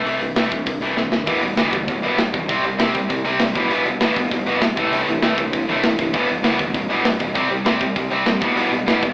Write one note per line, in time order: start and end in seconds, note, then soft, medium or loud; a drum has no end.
0.05 0.19 C2 medium
0.05 0.20 C3 medium
0.05 0.21 E3 medium
0.05 0.21 A3 medium
0.05 open hi-hat medium
0.20 0.34 C2 medium
0.20 0.35 C3 medium
0.20 0.35 E3 medium
0.20 open hi-hat soft
0.35 0.49 C2 medium
0.35 0.50 C3 medium
0.35 0.50 E3 medium
0.35 0.51 A3 loud
0.35 snare loud
0.35 open hi-hat medium
0.51 0.65 C2 medium
0.51 0.65 C3 medium
0.51 0.65 E3 medium
0.51 kick medium
0.51 open hi-hat medium
0.66 0.80 C2 medium
0.66 0.80 C3 medium
0.66 0.80 E3 medium
0.66 kick medium
0.66 open hi-hat medium
0.81 0.95 C2 medium
0.81 0.95 C3 medium
0.81 0.96 E3 medium
0.81 0.96 A3 medium
0.81 open hi-hat medium
0.96 1.10 C2 medium
0.96 1.10 C3 medium
0.96 1.10 E3 medium
0.96 snare medium
1.11 1.25 G1 medium
1.11 1.25 C3 medium
1.11 1.25 E3 medium
1.11 snare medium
1.26 1.40 E1 medium
1.26 1.41 E2 medium
1.26 1.42 B2 medium
1.26 1.40 E3 medium
1.26 1.41 G3 medium
1.26 1.42 B3 medium
1.26 kick loud
1.26 open hi-hat medium
1.41 1.55 E1 medium
1.41 1.56 E2 medium
1.41 1.56 B2 medium
1.41 1.56 E3 medium
1.41 1.56 G3 medium
1.41 open hi-hat medium
1.57 1.70 D2 medium
1.57 1.72 E2 medium
1.57 1.72 B2 medium
1.57 1.71 E3 loud
1.57 1.71 G3 loud
1.57 1.72 B3 loud
1.57 snare loud
1.57 open hi-hat medium
1.72 1.86 D2 medium
1.72 1.87 E2 medium
1.72 1.87 B2 medium
1.72 1.86 E3 medium
1.72 1.86 G3 medium
1.72 kick medium
1.72 open hi-hat medium
1.88 2.01 E1 medium
1.88 2.02 E2 medium
1.88 2.02 B2 medium
1.88 2.01 E3 medium
1.88 2.02 G3 medium
1.88 kick medium
1.88 open hi-hat medium
2.02 2.16 B1 medium
2.02 2.17 E2 medium
2.02 2.18 B2 medium
2.02 2.16 E3 medium
2.02 2.17 G3 medium
2.02 2.17 B3 medium
2.02 open hi-hat medium
2.17 2.31 E2 medium
2.17 2.32 E2 medium
2.17 2.32 B2 medium
2.17 2.32 E3 medium
2.17 2.32 G3 medium
2.17 snare loud
2.17 open hi-hat medium
2.33 2.47 E1 medium
2.33 2.47 E2 medium
2.33 2.48 B2 medium
2.33 2.47 E3 medium
2.33 2.47 G3 medium
2.33 kick medium
2.33 open hi-hat medium
2.48 2.62 C2 medium
2.48 2.62 C3 medium
2.48 2.62 G3 medium
2.48 2.63 C4 medium
2.48 kick loud
2.48 open hi-hat medium
2.63 2.76 C2 medium
2.63 2.77 C3 medium
2.63 2.77 G3 medium
2.63 open hi-hat soft
2.78 2.92 C2 medium
2.78 2.92 C3 medium
2.78 2.93 G3 loud
2.78 2.93 C4 loud
2.78 snare loud
2.78 open hi-hat medium
2.93 3.08 C2 medium
2.93 3.07 C3 medium
2.93 3.08 G3 medium
2.93 kick medium
2.93 open hi-hat medium
3.09 3.23 C2 medium
3.09 3.23 C3 medium
3.09 3.23 G3 medium
3.09 kick medium
3.09 open hi-hat medium
3.24 3.38 C2 medium
3.24 3.38 C3 medium
3.24 3.38 G3 medium
3.24 3.39 C4 medium
3.24 open hi-hat medium
3.39 3.53 C2 loud
3.39 3.53 C3 medium
3.39 3.53 G3 medium
3.39 snare loud
3.39 open hi-hat medium
3.54 3.68 B1 medium
3.54 3.70 E2 medium
3.54 3.68 B2 medium
3.54 3.70 E3 medium
3.54 3.68 G3 medium
3.54 3.69 B3 loud
3.54 kick medium
3.54 open hi-hat medium
3.69 3.83 B1 medium
3.69 3.84 E2 medium
3.69 3.84 B2 medium
3.69 3.85 E3 loud
3.69 3.84 G3 medium
3.69 3.85 B3 loud
3.69 open hi-hat medium
3.85 3.98 B1 medium
3.85 3.99 E2 medium
3.85 3.99 B2 medium
3.85 3.99 G3 medium
3.85 open hi-hat medium
4.00 4.13 A1 medium
4.00 4.15 E2 medium
4.00 4.15 B2 medium
4.00 4.16 E3 loud
4.00 4.15 G3 medium
4.00 4.15 B3 loud
4.00 snare loud
4.00 open hi-hat medium
4.16 4.29 A1 medium
4.16 4.30 E2 medium
4.16 4.30 B2 medium
4.16 4.30 G3 medium
4.16 kick medium
4.16 open hi-hat medium
4.31 4.44 B1 medium
4.31 4.45 E2 medium
4.31 4.45 B2 medium
4.31 4.45 G3 medium
4.31 kick medium
4.31 open hi-hat medium
4.46 4.59 F#1 medium
4.46 4.60 E2 medium
4.46 4.60 B2 medium
4.46 4.61 E3 loud
4.46 4.60 G3 medium
4.46 4.61 B3 medium
4.46 open hi-hat medium
4.61 4.75 E2 medium
4.61 4.75 B2 medium
4.61 4.75 B2 loud
4.61 4.75 G3 medium
4.61 snare loud
4.61 open hi-hat medium
4.76 4.90 C2 medium
4.76 4.91 A2 medium
4.76 4.91 C3 medium
4.76 4.91 E3 loud
4.76 4.91 A3 loud
4.76 kick loud
4.76 open hi-hat medium
4.91 5.05 C2 medium
4.91 5.07 A2 medium
4.91 5.06 C3 medium
4.91 5.06 E3 medium
4.91 5.07 A3 loud
4.91 open hi-hat medium
5.07 5.20 C2 medium
5.07 5.21 A2 medium
5.07 5.21 C3 medium
5.07 5.21 E3 medium
5.07 open hi-hat soft
5.22 5.35 C2 medium
5.22 5.36 A2 medium
5.22 5.36 C3 medium
5.22 5.36 E3 medium
5.22 5.37 A3 loud
5.22 snare loud
5.22 open hi-hat medium
5.37 5.51 C2 medium
5.37 5.51 A2 medium
5.37 5.51 C3 medium
5.37 5.51 E3 medium
5.37 kick medium
5.37 open hi-hat medium
5.52 5.66 C2 medium
5.52 5.67 A2 medium
5.52 5.66 C3 medium
5.52 5.66 E3 medium
5.52 kick medium
5.52 open hi-hat medium
5.68 5.81 C2 medium
5.68 5.83 A2 medium
5.68 5.82 C3 medium
5.68 5.83 E3 medium
5.68 5.83 A3 medium
5.68 open hi-hat medium
5.83 5.96 C2 medium
5.83 5.97 A2 medium
5.83 5.97 C3 medium
5.83 5.97 E3 medium
5.83 snare loud
5.83 open hi-hat medium
5.99 6.12 G1 medium
5.99 6.12 A2 medium
5.99 6.12 C3 medium
5.99 6.12 E3 medium
5.99 kick medium
5.99 open hi-hat medium
6.13 6.27 E1 medium
6.13 6.28 E2 medium
6.13 6.28 B2 medium
6.13 6.27 E3 medium
6.13 6.27 G3 medium
6.13 6.28 B3 loud
6.13 kick loud
6.13 open hi-hat medium
6.28 6.42 E1 medium
6.28 6.43 E2 medium
6.28 6.43 B2 medium
6.28 6.42 E3 medium
6.28 6.42 G3 medium
6.28 open hi-hat medium
6.43 6.57 D2 medium
6.43 6.58 E2 medium
6.43 6.58 B2 loud
6.43 6.58 E3 medium
6.43 6.58 G3 medium
6.43 6.58 B3 loud
6.43 snare loud
6.43 open hi-hat medium
6.59 6.72 D2 medium
6.59 6.73 E2 medium
6.59 6.73 B2 medium
6.59 6.73 E3 medium
6.59 6.73 G3 medium
6.59 kick medium
6.59 open hi-hat medium
6.74 6.87 E1 medium
6.74 6.88 E2 medium
6.74 6.88 B2 medium
6.74 6.88 E3 medium
6.74 6.88 G3 medium
6.74 kick medium
6.74 open hi-hat medium
6.89 7.02 B1 medium
6.89 7.04 E2 medium
6.89 7.04 B2 medium
6.89 7.03 E3 medium
6.89 7.03 G3 medium
6.89 7.04 B3 medium
6.89 open hi-hat medium
7.04 7.18 E2 medium
7.04 7.19 B2 medium
7.04 7.18 E3 medium
7.04 7.18 G3 medium
7.04 snare loud
7.04 open hi-hat medium
7.20 7.33 E1 medium
7.20 7.33 E2 medium
7.20 7.34 B2 medium
7.20 7.33 E3 medium
7.20 7.34 G3 medium
7.20 kick medium
7.20 open hi-hat medium
7.34 7.48 C2 medium
7.34 7.48 C3 medium
7.34 7.48 G3 medium
7.34 7.50 C4 loud
7.34 kick loud
7.34 open hi-hat medium
7.49 7.63 C2 medium
7.49 7.64 C3 medium
7.49 7.64 G3 medium
7.49 open hi-hat medium
7.65 7.79 C2 medium
7.65 7.79 C3 medium
7.65 7.80 G3 medium
7.65 7.80 C4 loud
7.65 snare loud
7.65 open hi-hat medium
7.80 7.94 C2 medium
7.80 7.94 C3 medium
7.80 7.94 G3 medium
7.80 kick medium
7.80 open hi-hat medium
7.96 8.09 C2 medium
7.96 8.10 C3 medium
7.96 8.10 G3 medium
7.96 kick medium
7.96 open hi-hat medium
8.11 8.24 C2 medium
8.11 8.25 C3 medium
8.11 8.26 G3 medium
8.11 8.26 C4 medium
8.11 open hi-hat medium
8.26 8.40 A#1 medium
8.26 8.40 C3 medium
8.26 8.40 G3 medium
8.26 snare loud
8.26 open hi-hat medium
8.40 8.54 B1 medium
8.40 8.55 E2 medium
8.40 8.55 B2 medium
8.40 8.56 E3 loud
8.40 8.56 G3 medium
8.40 8.56 B3 medium
8.40 kick loud
8.40 open hi-hat medium
8.56 8.70 B1 medium
8.56 8.71 E2 medium
8.56 8.70 B2 medium
8.56 8.71 E3 medium
8.56 8.71 G3 loud
8.56 8.71 B3 loud
8.56 open hi-hat medium
8.71 8.85 B1 medium
8.71 8.85 E2 medium
8.71 8.85 B2 medium
8.71 8.86 G3 medium
8.71 open hi-hat soft
8.86 9.00 A1 medium
8.86 9.01 E2 medium
8.86 9.01 B2 medium
8.86 9.02 E3 loud
8.86 9.02 G3 medium
8.86 9.02 B3 loud
8.86 snare loud
8.86 open hi-hat medium
9.02 9.13 A1 medium
9.02 9.13 E2 medium
9.02 9.13 B2 medium
9.02 9.13 G3 medium
9.02 kick medium
9.02 open hi-hat medium